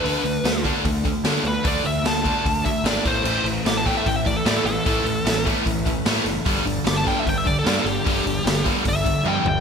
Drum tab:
CC |--------|--------|x-------|--------|
HH |oooooooo|oooooooo|-ooooooo|oooooooo|
SD |--o---o-|--o---o-|--o---o-|--o---o-|
T1 |--------|--------|--------|--------|
FT |--------|--------|--------|--------|
BD |---ooo--|o--ooo-o|---ooo--|o--ooo--|

CC |--------|--------|
HH |oooooooo|oooooo--|
SD |--o---o-|--o-----|
T1 |--------|------o-|
FT |--------|-------o|
BD |o--ooo--|o--ooo--|